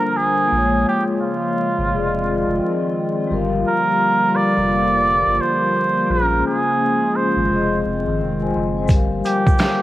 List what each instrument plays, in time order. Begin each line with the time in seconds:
Already playing: analog synth pad D3 F3 A#3 F4, vibraphone F3 D4 F4 C5, muted trumpet A#4
0.17 muted trumpet G#4
0.48 analog synth pad C#3 G#3, vibraphone A#3 F4
0.52 analog synth bass A#1, vibraphone G#3
0.57 vibraphone C#5
0.88 muted trumpet G4
1.21 muted trumpet F4
1.78 analog synth bass G#1
1.88 analog synth bass F1, analog synth pad D#3 C4, vibraphone F3 F4
1.94 vibraphone G#4 D5
2.04 vibraphone D#5
2.47 analog synth bass F1
3.27 analog synth bass G1, analog synth pad D3 G3 A#3, vibraphone G3 G4
3.33 vibraphone A#4 F5
3.68 muted trumpet A#4
4.36 muted trumpet D5
4.57 analog synth bass F1
5.27 analog synth bass G1
5.41 muted trumpet C5
6.07 analog synth bass A#1, analog synth pad C#3 G#3, vibraphone A#3 F4
6.12 vibraphone G#4, muted trumpet A#4
6.16 vibraphone C5
6.22 vibraphone C#4
6.46 muted trumpet G#4
7.16 muted trumpet C5
7.36 analog synth bass G#1
7.46 analog synth pad D#3 C4, vibraphone F3 F4
7.50 analog synth bass F1, vibraphone G#4
7.56 vibraphone D#5
7.85 analog synth bass F1
8.07 analog synth bass G#1
8.20 analog synth bass F1
8.42 vibraphone C5 G#5
8.55 analog synth bass F#1, vibraphone D#5 C6
8.77 vibraphone C5 G#5
8.86 analog synth bass G1, analog synth pad D3 F3 G3 A#3, vibraphone G3 G4, kick, shaker
8.90 vibraphone A#4, closed hi-hat
8.95 vibraphone F5
9.25 muted trumpet G4, closed hi-hat, shaker
9.47 kick, shaker
9.58 finger snap, snare, closed hi-hat, shaker